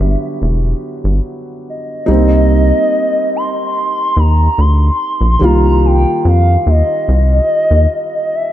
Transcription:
Already playing: D3 F#3 G3 B3 E5
0.00 G1
0.42 E1
1.04 G1
1.70 D#5
2.06 C2 G3 A#3 D#4
2.11 C4
3.36 C6
4.17 D#2 A#5
4.58 D2 C6
5.21 A#1
5.39 C2 D#3 G3 A#3
5.44 F4 A#5
5.86 G5
6.25 F2 F5
6.67 D#2 D#5
7.08 C2
7.71 D#2
8.35 E5

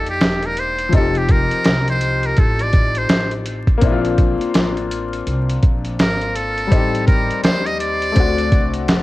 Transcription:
Already playing: F2 A#3 D4 D#4 G4
0.06 G4, closed hi-hat
0.21 E1, snare, closed hi-hat
0.43 A#4, closed hi-hat
0.57 C5, closed hi-hat
0.79 closed hi-hat
0.89 F1 F3 C4, closed hi-hat
0.93 D#4 G4 A4, kick
1.15 G4, closed hi-hat
1.29 A#4, kick, closed hi-hat
1.51 closed hi-hat
1.64 C2, snare, closed hi-hat
1.88 C5, closed hi-hat
2.01 closed hi-hat
2.23 A#4, closed hi-hat
2.37 A1 A4, kick, closed hi-hat
2.59 D5, closed hi-hat
2.73 kick, closed hi-hat
2.95 C5, closed hi-hat
3.09 A1, snare, closed hi-hat
3.31 closed hi-hat
3.46 closed hi-hat
3.67 kick, closed hi-hat
3.78 A#3 C4, closed hi-hat
3.82 A#1 D4 E4, kick
3.92 F4
4.05 closed hi-hat
4.18 kick, closed hi-hat
4.41 muted upright bass stroke, closed hi-hat
4.54 A1, snare, closed hi-hat
4.77 closed hi-hat
4.91 closed hi-hat
5.13 closed hi-hat
5.27 C2, closed hi-hat
5.49 closed hi-hat
5.63 A#1, kick, closed hi-hat
5.85 closed hi-hat
5.99 G#1 A#4, snare, closed hi-hat
6.22 closed hi-hat
6.36 A4, closed hi-hat
6.58 closed hi-hat
6.67 G3 C4
6.72 A1 D#4 G4, kick, closed hi-hat
6.95 closed hi-hat
7.07 A#4, kick, closed hi-hat
7.30 muted upright bass stroke, closed hi-hat
7.43 D#2 C5, snare, closed hi-hat
7.66 D#5, closed hi-hat
7.80 D5, closed hi-hat
8.02 closed hi-hat
8.12 A3 C4, closed hi-hat
8.16 D2 D4 F#4, kick
8.38 closed hi-hat
8.52 C2, kick, closed hi-hat
8.74 closed hi-hat
8.88 F#1, snare, closed hi-hat

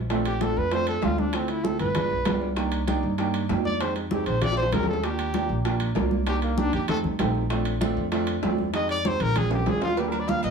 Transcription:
Already playing: A#1
0.10 A3 C4 D4 F4, high bongo, high conga, high timbale
0.25 G4, high conga, high timbale
0.41 A3 C4 D4 F4 A4, high bongo, high conga, high timbale, low timbale
0.56 F2 B4, high conga
0.71 A3 C4 D4 F4 C5, high bongo, high conga, high timbale
0.87 A4, high conga, high timbale
1.02 D2 A3 C4 D4 F4, high bongo, low bongo, high conga, low timbale
1.18 D4, high conga
1.33 A3 C4 E4 F4, high bongo, high conga, high timbale
1.48 E4, high bongo, high conga, high timbale
1.64 A3 C4 E4 F4 A4, high bongo, high conga, low timbale
1.79 G1 B4, high conga, high timbale
1.95 G#3 B3 D4 F4, high bongo, high conga, low conga, high timbale
2.10 B1, high bongo, high conga
2.25 C2 G#3 B3 D4 F4 G5, high bongo, low bongo, high conga, high timbale, low timbale
2.41 D5, high bongo
2.56 A#3 D4 D#4 G4, high bongo, high conga, high timbale
2.72 high conga, high timbale
2.87 A#3 D4 D#4 G4, high bongo, high conga, high timbale, low timbale
3.03 G2, high conga
3.18 A#3 D4 D#4 G4, high bongo, high conga, high timbale
3.34 high conga, high timbale
3.49 F2 A#3 D4 D#4 G4, high bongo, low bongo, high conga, low timbale
3.65 D5, high conga
3.80 G#3 C4 D#4 G4 C5, high bongo, high conga, high timbale
3.96 D#4, high bongo, high conga, high timbale
4.11 G#3 C4 D#4 G4 G#4, high bongo, high conga, low timbale
4.26 A#1 C5, high conga, high timbale
4.42 C4 D4 F4 G#4 D5, high bongo, high conga, low conga, high timbale
4.52 high bongo
4.57 C5, high conga
4.63 high bongo
4.72 D#2 C4 D4 F4 G#4 A#4, low bongo, high conga, high timbale, low timbale
4.83 low bongo
4.88 A4, high conga
4.93 low bongo
5.04 A#3 D4 F4 G4, high bongo, high conga, high timbale
5.19 high conga, high timbale
5.34 A#3 D4 F4 G4, high bongo, high conga, high timbale, low timbale
5.49 A#1, high conga
5.65 A#3 D4 F4 G4, high bongo, high conga, high timbale
5.80 high conga, high timbale
5.95 C2 A#3 D4 F4 A#4, high bongo, low bongo, high conga, low timbale
6.11 high conga
6.26 A#3 D4 D#4 G4, high bongo, high conga, high timbale
6.42 A#3, high bongo, high conga, high timbale
6.57 A#3 D4 D#4 G4, high bongo, high conga, low timbale
6.73 F2 G4, high conga, high timbale
6.88 A3 C4 D#4 G4 A4, high bongo, high conga, low conga, high timbale
7.04 C2, high bongo, high conga, low conga
7.19 A#1 A3 C4 D#4 G4, high bongo, low bongo, high conga, high timbale, low timbale
7.35 high bongo
7.50 A3 C4 D4 F4, high bongo, high conga, high timbale
7.65 high conga, high timbale
7.81 A3 C4 D4 F4, high bongo, high conga, high timbale, low timbale
7.97 F2, high conga
8.12 A3 C4 D4 F4, high bongo, high conga, high timbale
8.27 high conga, high timbale
8.42 F2 A3 C4 D4 F4, high bongo, low bongo, high conga, low timbale
8.58 high conga
8.73 G#3 C4 D#4 G4 D#5, high bongo, high timbale
8.89 D5, high bongo, high conga, high timbale
9.04 G#3 C4 D#4 G4 C5, high bongo, high conga, low timbale
9.20 A#1 A#4, high conga, high timbale
9.35 G#3 C4 D4 F4 G#4, high bongo, high conga, low conga, high timbale
9.51 G4, low bongo, high conga, high timbale
9.66 D#2 G#3 C4 D4 F4 G#4, low bongo, high conga, low timbale
9.81 F4, low bongo, low timbale
9.97 G3 A#3 D4 F4 G4, cowbell, high conga, low agogo
10.09 A#4, low agogo
10.13 high conga
10.20 D5
10.27 G3 A#3 D4 F4 F5, cowbell, high conga, low timbale
10.43 A#1 D#5, cowbell, high conga, low agogo

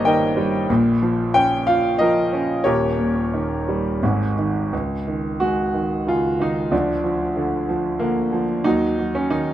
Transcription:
Already playing: G1 G2 D#3 G3 A#3 G4 A#4 C5 C#5 D#5
0.05 D#3 A#4 D#5 G5
0.37 G3
0.70 A#1 A#2
1.02 F3
1.34 C#4 G5
1.67 F4 F5
1.99 F3 A#4 D#5
2.33 C#4
2.64 D#1 D#2 G4 A#4 C#5
2.99 A#2
3.34 D#3
3.69 G3
4.03 G#1 G#2
4.38 D#3
4.73 C#2
5.08 D#3
5.40 G#3 F#4
5.74 D#3
6.07 C#3 F4
6.40 D#3 D#4
6.72 D2 F3 D4
7.04 F3
7.37 D3
7.69 F3
7.99 D3 A#3
8.33 F3
8.64 D#2 F#3 D#4
8.99 F#3
9.15 C#4
9.30 D#3 D#4

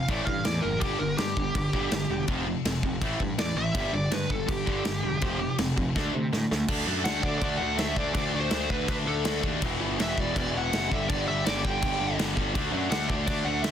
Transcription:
0.08 A1 A2 E3 A3 D5, kick, crash
0.25 G2 A2 E3 F5, kick
0.45 E2 A2 E3 D5, snare, crash
0.61 F#1 A2 E3 A#4
0.80 G1 G2 D3 G3 G4, kick, crash
0.99 G1 G2 D3 A#4
1.17 G2 D3 G4, snare, crash
1.37 G1 G2 D3, kick
1.55 G1 G2 D3, kick, crash
1.73 G1 G2 D3 G3, kick
1.91 G1 G2 D3, snare, crash
2.10 E1 G2 D3
2.28 F1 F2 C3 F3, kick, crash
2.46 F2 C3
2.65 F1 F2 C3, snare, crash
2.83 F1 F2 C3, kick
3.02 A1 A2 E3 A3, kick, crash
3.20 G2 A2 E3, kick
3.38 E2 A2 E3 D5, snare, crash
3.55 A1 A2 E3 E5
3.75 G1 G2 D3 G3, kick, crash
3.93 G1 G2 D3 D5
4.11 G2 D3 B4, snare, crash
4.30 G1 G2 D3 A4, kick
4.47 G1 G2 D3 G4, kick, crash
4.66 G1 G2 D3 G3, kick
4.84 G1 G2 D3, snare, crash
5.03 E1 G2 D3
5.22 F1 F2 C3 F3, kick, crash
5.40 F2 C3
5.58 F1 F2 C3, snare, crash
5.76 F1 F2 C3, kick
5.96 D2 D3 A3 D4, kick, snare
6.14 C3 D3 A3
6.33 A2 D3 A3, snare
6.51 D2 D3 A3, snare
6.68 D2 D3 A3 D4, kick, crash
6.87 F#2 D3 A3 D4
7.05 D2 D3 A3 D4 F#5, snare, crash
7.22 D2 D3 A3 D4 D5, kick
7.38 D2 D5, kick, crash
7.43 D3 A3 D4
7.58 D2 D3 F#5
7.62 A3 D4
7.78 D2 D3 A3 D4 E5, snare, crash
7.96 D2 D3 A3 D4 D5, kick
8.14 D2 D3 A3 D4 D5, kick, crash
8.34 D2 D3 A3 D4
8.40 C5
8.51 D2 D3 A3 D4, snare, crash
8.70 D2 D3 A3 D4 B4, kick
8.88 D2 D3 A3 D4 B4, kick, crash
9.06 D2 D3 A3 D4 A4
9.25 D2 D3 A3 D4, snare, crash
9.43 D#2 D3 A3 D4, kick
9.62 E1 E2 B2 E3, kick, crash
9.80 G1 E2 B2 E3
9.99 E1 E2 B2 E3 E5, snare, crash
10.16 E1 E2 B2 E3 D5, kick
10.35 E1 E2 B2 E3 D5, kick, crash
10.53 E1 E2 B2 E3 F#5
10.72 F#1 E2 B2 E3, snare, crash
10.90 G1 G2 D3 G3 E5, kick
11.09 G1 G2 D3 G3 D5, kick, crash
11.26 G1 G2 D3 G3 E5
11.45 G1 G2 D3 G3 D5, snare, crash
11.64 G1 G2 D3 G3 G5, kick
11.81 G1 G2 D3 G3, kick, crash
11.99 G1 G2 D3 G3
12.17 G1 G2 D3 G3, snare, crash
12.35 G1 G2 D3 G3, kick
12.54 D2 D3 A3 D4, kick, crash
12.72 F#2 D3 A3 D4
12.90 D2 D3 A3 D4 F#5, snare, crash
13.08 D2 D3 A3 D4 D5, kick
13.27 D2 D3 A3 D4 D5, kick, crash
13.45 D2 D3 A3 D4 F#5
13.62 D2 D3 A3 D4 E5, snare, crash

